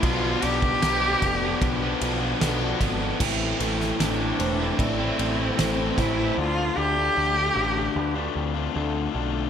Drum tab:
CC |----------------|x---------------|----------------|
RD |x-x-x-x-x-x-x-x-|--x-x-x-x-x-x-x-|----------------|
SD |----o-------o-o-|---oo-------o-o-|----------------|
BD |o--o--o-o-----o-|o-------o-----o-|----------------|